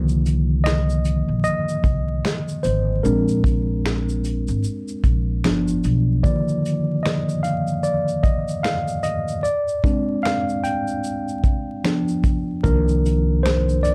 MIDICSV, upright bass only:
0, 0, Header, 1, 2, 480
1, 0, Start_track
1, 0, Key_signature, -3, "minor"
1, 0, Tempo, 800000
1, 1823, Time_signature, 4, 2, 24, 8
1, 8367, End_track
2, 0, Start_track
2, 0, Title_t, "Upright bass"
2, 0, Program_c, 0, 32
2, 0, Note_on_c, 0, 36, 103
2, 743, Note_off_c, 0, 36, 0
2, 771, Note_on_c, 0, 34, 79
2, 854, Note_off_c, 0, 34, 0
2, 1105, Note_on_c, 0, 36, 84
2, 1315, Note_off_c, 0, 36, 0
2, 1588, Note_on_c, 0, 32, 95
2, 1797, Note_off_c, 0, 32, 0
2, 1828, Note_on_c, 0, 34, 105
2, 2663, Note_off_c, 0, 34, 0
2, 2690, Note_on_c, 0, 32, 83
2, 2774, Note_off_c, 0, 32, 0
2, 3025, Note_on_c, 0, 34, 83
2, 3234, Note_off_c, 0, 34, 0
2, 3269, Note_on_c, 0, 31, 87
2, 3477, Note_off_c, 0, 31, 0
2, 3508, Note_on_c, 0, 35, 93
2, 3716, Note_off_c, 0, 35, 0
2, 7587, Note_on_c, 0, 36, 102
2, 8367, Note_off_c, 0, 36, 0
2, 8367, End_track
0, 0, End_of_file